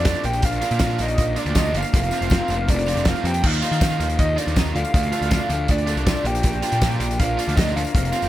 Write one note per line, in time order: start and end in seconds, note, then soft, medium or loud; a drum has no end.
0.00 0.14 F2 medium
0.00 0.21 D4 medium
0.00 1.89 F4 medium
0.00 0.22 D5 medium
0.00 0.26 D5 loud
0.00 0.22 A5 medium
0.04 0.22 D3 medium
0.04 0.25 F3 medium
0.04 0.23 A3 medium
0.04 0.23 D4 medium
0.04 0.24 F4 medium
0.04 kick loud
0.04 snare loud
0.04 closed hi-hat loud
0.04 tambourine medium
0.14 closed hi-hat medium
0.24 0.42 A#1 loud
0.24 0.41 A#2 medium
0.24 0.43 F3 medium
0.24 0.44 A#3 medium
0.24 0.44 D4 medium
0.24 0.44 G4 medium
0.24 1.91 F5 medium
0.24 0.46 G5 loud
0.24 1.91 A#5 medium
0.24 closed hi-hat medium
0.24 tambourine soft
0.33 closed hi-hat medium
0.33 tambourine medium
0.42 0.60 A#1 loud
0.42 0.79 A#2 medium
0.42 0.63 F3 loud
0.42 0.62 A#3 loud
0.42 0.60 D4 loud
0.42 1.00 F4 medium
0.42 1.00 F5 loud
0.42 kick loud
0.42 closed hi-hat loud
0.52 closed hi-hat medium
0.61 0.79 D3 medium
0.61 0.81 F3 medium
0.61 0.82 A#3 medium
0.61 0.82 D4 medium
0.61 0.80 F4 loud
0.61 closed hi-hat medium
0.61 tambourine medium
0.71 0.97 A#2 medium
0.71 closed hi-hat medium
0.79 1.00 A#2 medium
0.79 1.05 D3 medium
0.79 1.00 F3 medium
0.79 0.99 A#3 medium
0.79 0.98 D4 medium
0.79 1.05 F4 medium
0.79 kick loud
0.79 snare loud
0.79 closed hi-hat loud
0.79 tambourine medium
0.90 closed hi-hat soft
0.98 1.17 A#1 medium
0.98 1.16 A#2 medium
0.98 1.18 F3 medium
0.98 1.19 A#3 medium
0.98 1.18 D4 loud
0.98 1.35 D#4 medium
0.98 1.40 D#5 loud
0.98 closed hi-hat medium
0.98 tambourine medium
1.08 closed hi-hat medium
1.18 1.36 A#1 loud
1.18 1.37 A#2 medium
1.18 1.37 F3 medium
1.18 1.36 A#3 loud
1.18 1.34 D4 loud
1.18 kick loud
1.18 closed hi-hat loud
1.27 tambourine soft
1.36 1.54 A#2 medium
1.36 1.53 D3 medium
1.36 1.56 F3 medium
1.36 1.56 A#3 medium
1.36 1.57 D4 loud
1.36 1.56 D4 medium
1.36 1.55 F4 loud
1.36 1.59 D5 medium
1.36 closed hi-hat medium
1.36 tambourine medium
1.46 1.72 D2 medium
1.46 closed hi-hat soft
1.55 1.92 A#2 medium
1.55 1.80 D3 medium
1.55 1.76 F3 medium
1.55 1.75 A#3 medium
1.55 1.73 D4 loud
1.55 1.75 D#4 medium
1.55 1.80 F4 medium
1.55 1.75 D#5 loud
1.55 kick loud
1.55 snare loud
1.55 closed hi-hat loud
1.55 tambourine loud
1.74 1.83 G1 loud
1.74 1.93 F3 medium
1.74 1.94 A#3 medium
1.74 1.92 D4 medium
1.74 1.93 F4 medium
1.74 1.93 F5 loud
1.74 closed hi-hat medium
1.82 closed hi-hat medium
1.82 tambourine medium
1.92 2.11 F1 loud
1.92 2.30 F2 loud
1.92 2.29 C3 loud
1.92 2.13 F3 loud
1.92 2.12 A#3 loud
1.92 2.10 C4 loud
1.92 3.41 F4 medium
1.92 2.66 F4 medium
1.92 3.41 C5 medium
1.92 2.71 F5 loud
1.92 4.71 A#5 loud
1.92 kick loud
1.92 closed hi-hat loud
1.92 tambourine soft
2.02 closed hi-hat medium
2.02 tambourine soft
2.11 2.31 F3 medium
2.11 2.32 A#3 medium
2.11 2.31 C4 medium
2.11 2.31 F4 medium
2.11 closed hi-hat medium
2.11 tambourine medium
2.20 2.39 F1 medium
2.20 closed hi-hat medium
2.20 tambourine soft
2.30 2.51 C3 medium
2.30 2.51 F3 medium
2.30 2.50 A#3 medium
2.30 2.49 C4 medium
2.30 2.56 F4 medium
2.30 kick loud
2.30 snare loud
2.30 closed hi-hat loud
2.30 tambourine loud
2.48 2.67 F1 medium
2.48 2.70 F3 medium
2.48 2.69 A#3 medium
2.48 2.70 C4 medium
2.48 closed hi-hat medium
2.48 tambourine medium
2.52 2.88 F2 medium
2.52 2.68 C3 medium
2.68 2.95 F1 medium
2.68 2.88 C3 medium
2.68 2.88 F3 medium
2.68 2.86 A#3 medium
2.68 2.86 C4 loud
2.68 3.07 D4 medium
2.68 3.10 D5 loud
2.68 kick loud
2.68 closed hi-hat loud
2.68 tambourine soft
2.77 closed hi-hat medium
2.77 tambourine soft
2.86 3.26 F2 medium
2.86 3.05 C3 medium
2.86 3.06 F3 medium
2.86 3.06 A#3 loud
2.86 3.07 C4 loud
2.86 3.06 F4 loud
2.86 closed hi-hat medium
2.86 tambourine medium
2.95 3.13 F1 medium
2.95 closed hi-hat medium
2.95 tambourine soft
3.05 3.42 C3 medium
3.05 3.26 F3 medium
3.05 3.24 A#3 medium
3.05 3.23 C4 medium
3.05 3.31 F4 medium
3.05 3.26 F4 medium
3.05 3.26 F5 loud
3.05 kick loud
3.05 snare loud
3.05 closed hi-hat loud
3.05 tambourine medium
3.15 closed hi-hat medium
3.15 tambourine soft
3.24 3.42 F2 medium
3.24 3.43 F3 medium
3.24 3.42 A#3 medium
3.24 3.42 C4 medium
3.24 3.43 G4 medium
3.24 3.48 G5 loud
3.24 closed hi-hat medium
3.24 tambourine soft
3.34 closed hi-hat medium
3.34 tambourine medium
3.42 3.61 D#2 loud
3.42 3.79 D#3 medium
3.42 3.64 F3 loud
3.42 3.62 A#3 loud
3.42 3.61 D#4 loud
3.42 4.71 F4 medium
3.42 4.19 F4 medium
3.42 4.73 D#5 medium
3.42 4.19 F5 loud
3.42 kick loud
3.42 crash loud
3.53 closed hi-hat medium
3.62 3.80 D#3 medium
3.62 3.82 F3 medium
3.62 3.81 A#3 medium
3.62 3.82 D#4 medium
3.62 3.81 F4 loud
3.62 closed hi-hat medium
3.62 tambourine medium
3.71 3.98 D#3 medium
3.71 closed hi-hat medium
3.71 tambourine soft
3.81 4.00 D#3 medium
3.81 4.00 F3 medium
3.81 3.99 A#3 medium
3.81 3.98 D#4 medium
3.81 4.06 F4 medium
3.81 kick loud
3.81 snare loud
3.81 closed hi-hat loud
3.81 tambourine loud
3.99 4.17 D#2 medium
3.99 4.16 D#3 medium
3.99 4.18 F3 medium
3.99 4.18 A#3 medium
3.99 4.19 D#4 loud
3.99 closed hi-hat medium
3.99 tambourine medium
4.09 closed hi-hat medium
4.17 4.36 D#2 loud
4.17 4.36 D#3 medium
4.17 4.36 F3 medium
4.17 4.35 A#3 medium
4.17 4.34 D#4 medium
4.17 4.37 D#4 medium
4.17 4.39 D#5 loud
4.17 kick loud
4.17 closed hi-hat loud
4.28 tambourine soft
4.36 4.53 D#3 medium
4.36 4.54 F3 medium
4.36 4.55 A#3 medium
4.36 4.57 D4 medium
4.36 4.55 D#4 loud
4.36 4.56 F4 loud
4.36 4.56 D5 medium
4.36 closed hi-hat medium
4.36 tambourine medium
4.47 4.73 D#2 medium
4.47 closed hi-hat soft
4.54 4.73 D#3 medium
4.54 4.75 F3 medium
4.54 4.73 A#3 medium
4.54 4.73 D#4 loud
4.54 4.75 F4 medium
4.54 4.65 D#5 medium
4.54 kick loud
4.54 snare loud
4.54 closed hi-hat loud
4.54 tambourine medium
4.66 closed hi-hat soft
4.71 4.83 D2 medium
4.71 4.93 F3 medium
4.71 4.93 A3 medium
4.71 4.95 D4 medium
4.71 8.29 F4 medium
4.71 4.92 F4 medium
4.71 7.88 D5 medium
4.71 4.92 F5 loud
4.71 6.22 A5 medium
4.71 tambourine soft
4.76 4.92 D3 medium
4.76 closed hi-hat medium
4.85 closed hi-hat medium
4.85 tambourine medium
4.93 5.11 D2 loud
4.93 5.30 D3 medium
4.93 5.14 F3 loud
4.93 5.12 A3 loud
4.93 5.12 D4 loud
4.93 5.65 F4 medium
4.93 5.73 F5 loud
4.93 kick loud
4.93 closed hi-hat loud
5.03 closed hi-hat medium
5.12 5.29 D3 medium
5.12 5.31 F3 medium
5.12 5.31 A3 medium
5.12 5.33 D4 medium
5.12 5.31 F4 loud
5.12 closed hi-hat medium
5.12 tambourine medium
5.21 5.39 D2 medium
5.21 closed hi-hat medium
5.21 tambourine soft
5.31 5.50 D3 medium
5.31 5.50 F3 medium
5.31 5.49 A3 medium
5.31 5.49 D4 medium
5.31 5.56 F4 medium
5.31 kick loud
5.31 snare loud
5.31 closed hi-hat loud
5.31 tambourine loud
5.49 5.67 D2 loud
5.49 5.68 D3 medium
5.49 5.69 F3 medium
5.49 5.69 A3 medium
5.49 5.70 D4 medium
5.49 closed hi-hat medium
5.49 tambourine medium
5.68 5.95 D2 loud
5.68 5.88 D3 medium
5.68 5.88 F3 medium
5.68 5.86 A3 medium
5.68 6.26 D4 medium
5.68 5.86 D4 loud
5.68 6.28 D5 loud
5.68 kick loud
5.68 closed hi-hat loud
5.78 closed hi-hat medium
5.78 tambourine soft
5.87 6.05 D3 medium
5.87 6.06 F3 medium
5.87 6.06 A3 loud
5.87 6.07 D4 loud
5.87 6.06 F4 medium
5.87 closed hi-hat medium
5.87 tambourine medium
5.96 6.14 C2 medium
5.96 closed hi-hat medium
6.06 6.24 D3 medium
6.06 6.25 F3 medium
6.06 6.24 A3 medium
6.06 6.23 D4 medium
6.06 6.26 F4 medium
6.06 kick loud
6.06 snare loud
6.06 closed hi-hat loud
6.06 tambourine medium
6.16 closed hi-hat soft
6.24 6.42 A#1 loud
6.24 6.42 A#2 medium
6.24 6.44 F3 medium
6.24 6.44 A#3 medium
6.24 6.44 D4 medium
6.24 7.19 G4 loud
6.24 7.18 G5 loud
6.24 8.29 A#5 medium
6.24 closed hi-hat medium
6.24 tambourine soft
6.35 closed hi-hat medium
6.35 tambourine medium
6.43 6.61 A#1 loud
6.43 6.79 A#2 loud
6.43 6.63 F3 loud
6.43 6.62 A#3 loud
6.43 6.60 D4 loud
6.43 kick loud
6.43 closed hi-hat loud
6.53 closed hi-hat medium
6.61 6.81 D3 medium
6.61 6.80 F3 medium
6.61 6.81 A#3 medium
6.61 6.81 D4 medium
6.61 6.81 F4 loud
6.61 closed hi-hat medium
6.61 tambourine medium
6.72 6.98 A#2 medium
6.72 closed hi-hat medium
6.72 tambourine soft
6.80 7.00 A#2 medium
6.80 7.06 D3 medium
6.80 7.00 F3 medium
6.80 7.00 A#3 medium
6.80 6.98 D4 medium
6.80 7.06 F4 medium
6.80 kick loud
6.80 snare loud
6.80 closed hi-hat loud
6.80 tambourine loud
6.91 closed hi-hat medium
6.99 7.17 A#1 medium
6.99 7.16 A#2 medium
6.99 7.18 F3 medium
6.99 7.19 A#3 loud
6.99 7.18 D4 loud
6.99 closed hi-hat medium
6.99 tambourine medium
7.11 closed hi-hat medium
7.17 7.37 A#1 loud
7.17 7.38 A#2 medium
7.17 7.38 F3 medium
7.17 7.37 A#3 medium
7.17 7.36 D4 medium
7.17 7.54 F4 medium
7.17 7.58 F5 loud
7.17 kick loud
7.17 closed hi-hat loud
7.29 tambourine soft
7.37 7.54 A#2 medium
7.37 7.55 D3 medium
7.37 7.56 F3 medium
7.37 7.57 A#3 loud
7.37 7.57 D4 loud
7.37 7.56 F4 loud
7.37 closed hi-hat medium
7.37 tambourine medium
7.48 7.73 D2 medium
7.48 closed hi-hat medium
7.55 7.92 A#2 medium
7.55 7.80 D3 medium
7.55 7.77 F3 medium
7.55 7.76 A#3 medium
7.55 7.73 D4 loud
7.55 7.75 D#4 medium
7.55 7.81 F4 medium
7.55 7.75 D#5 medium
7.55 kick loud
7.55 snare loud
7.55 closed hi-hat loud
7.55 tambourine loud
7.69 closed hi-hat soft
7.75 7.84 D2 loud
7.75 7.94 F3 medium
7.75 7.95 A#3 medium
7.75 7.92 D4 medium
7.75 8.29 F4 medium
7.75 8.29 F5 loud
7.75 closed hi-hat medium
7.75 tambourine soft
7.85 closed hi-hat medium
7.85 tambourine medium
7.93 8.11 F1 loud
7.93 8.29 F2 medium
7.93 8.29 C3 loud
7.93 8.13 F3 loud
7.93 8.12 A#3 loud
7.93 8.11 C4 loud
7.93 8.29 C5 medium
7.93 kick loud
7.93 closed hi-hat loud
8.05 closed hi-hat medium
8.12 8.29 F3 medium
8.12 8.29 A#3 medium
8.12 8.29 C4 medium
8.12 8.29 F4 medium
8.12 closed hi-hat medium
8.12 tambourine medium
8.22 8.29 F1 medium
8.22 closed hi-hat medium